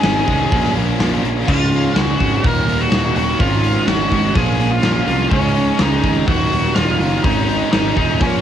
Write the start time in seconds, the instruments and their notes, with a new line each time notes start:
Already playing: distorted electric guitar G#2, lead electric guitar G#4 G#5
0.02 picked electric bass G#1, distorted electric guitar G#2 D#3 G#3 C#4 D#4, snare, open hi-hat
0.26 picked electric bass C2, distorted electric guitar G#2 D#3 G#3 C#4 D#4, kick, open hi-hat
0.51 picked electric bass A#1, distorted electric guitar A#2 F3 A#3 C#4 F4, kick, open hi-hat
0.64 snare
0.75 picked electric bass A#1, distorted electric guitar A#2 F3 A#3 C#4 F4, open hi-hat
0.98 picked electric bass A#1, distorted electric guitar A#2 F3 A#3 C#4, snare, open hi-hat
1.03 distorted electric guitar F4
1.24 picked electric bass A#1, distorted electric guitar A#2 F3 A#3 C#4 F4, open hi-hat
1.47 picked electric bass C#2, distorted electric guitar C#3 G#3 C#4 D#4 G#4, lead electric guitar F4 F5, kick, crash
1.71 distorted electric guitar C#3 G#3 C#4 D#4 G#4, open hi-hat
1.95 picked electric bass C#2, distorted electric guitar C#3 G#3 C#4 D#4 G#4, lead electric guitar F#4 F#5, snare, open hi-hat
2.19 picked electric bass G#1, distorted electric guitar C#3 G#3 C#4 D#4 G#4, kick, open hi-hat
2.44 picked electric bass D#1, distorted electric guitar D#2 A#2 D#3 F#3 A#3 D#4, lead electric guitar A#4 A#5, kick, open hi-hat
2.67 picked electric bass D#1, distorted electric guitar D#2 A#2 D#3 F#3 A#3 D#4, open hi-hat
2.81 lead electric guitar F#4 F#5
2.91 picked electric bass D#1, distorted electric guitar D#2 A#2 D#3 F#3 A#3 D#4, snare, open hi-hat
3.15 picked electric bass D#1, distorted electric guitar D#2 A#2 D#3 F#3 A#3 D#4, lead electric guitar F#4 F#5, open hi-hat
3.40 picked electric bass G#1, distorted electric guitar G#2 D#3 G#3 C#4 D#4, lead electric guitar F4 F5, kick, open hi-hat
3.62 distorted electric guitar G#2 D#3 G#3 D#4, open hi-hat
3.66 distorted electric guitar G#3 C#4
3.87 picked electric bass G#1, distorted electric guitar G#2 D#3 G#3 C#4, lead electric guitar F#4 F#5, snare, open hi-hat
3.91 distorted electric guitar D#4
4.09 picked electric bass G#1, distorted electric guitar G#2 D#3 G#3 C#4 D#4, kick, open hi-hat
4.13 distorted electric guitar G#3
4.35 picked electric bass A#1, distorted electric guitar A#2 F3 A#3 C#4 F4, lead electric guitar G#4 G#5, kick, open hi-hat
4.58 picked electric bass A#1, distorted electric guitar A#2 F3 A#3 C#4 F4, open hi-hat
4.63 distorted electric guitar A#3
4.71 lead electric guitar F4 F5
4.82 picked electric bass A#1, distorted electric guitar A#2 F3 A#3 C#4 F4, snare, open hi-hat
5.05 picked electric bass C2, distorted electric guitar A#2 F3 C#4 F4, lead electric guitar F4 F5, open hi-hat
5.10 distorted electric guitar A#3
5.31 picked electric bass C#2, distorted electric guitar C#3 G#3 C#4 D#4 G#4, lead electric guitar C#4 C#5, kick, open hi-hat
5.54 distorted electric guitar C#3 G#3 D#4 G#4, open hi-hat
5.58 distorted electric guitar C#4
5.79 picked electric bass C#2, distorted electric guitar C#3 G#3 C#4 D#4 G#4, lead electric guitar D#4 D#5, snare
6.02 picked electric bass G#1, distorted electric guitar C#3 G#3 C#4 D#4 G#4, kick, open hi-hat
6.27 picked electric bass D#1, distorted electric guitar D#2 A#2 D#3 F#3 A#3 D#4, lead electric guitar F#4 F#5, kick, open hi-hat
6.51 picked electric bass D#1, distorted electric guitar D#2 A#2 D#3 F#3 A#3 D#4, open hi-hat
6.74 picked electric bass D#1, distorted electric guitar D#2 A#2 D#3 F#3 A#3, lead electric guitar F4 F5, snare, open hi-hat
6.79 distorted electric guitar D#4
6.99 picked electric bass F#1, distorted electric guitar D#2 A#2 D#3 F#3 A#3 D#4, open hi-hat
7.23 picked electric bass G#1, distorted electric guitar G#2 D#3 G#3 C#4 D#4, lead electric guitar D#4 D#5, kick, open hi-hat
7.48 distorted electric guitar G#2 D#3 G#3 C#4 D#4, open hi-hat
7.72 picked electric bass G#1, distorted electric guitar G#2 D#3 G#3 C#4 D#4, lead electric guitar D#4 D#5, snare, open hi-hat
7.96 picked electric bass D#1, distorted electric guitar G#2 D#3 G#3 C#4 D#4, lead electric guitar D#4 D#5, kick, open hi-hat
8.19 picked electric bass A#1, distorted electric guitar A#2 F3 A#3 C#4 F4, lead electric guitar C#4 C#5, kick, open hi-hat